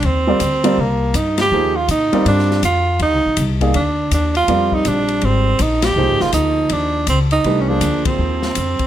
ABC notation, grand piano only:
X:1
M:4/4
L:1/8
Q:"Swing" 1/4=162
K:Cm
V:1 name="Grand piano"
z [G,CFBd] z [G,CFBd] z4 | [F,B,EAc] z2 [G,CFBd]3 z2 | z3 [B,EAdf] z4 | [G,CFBd]4- [G,CFBd] z3 |
[F,B,EAc]4- [F,B,EAc] z3 | [=E,=A,DG=B] [F,_B,F_Ac]4 z3 |]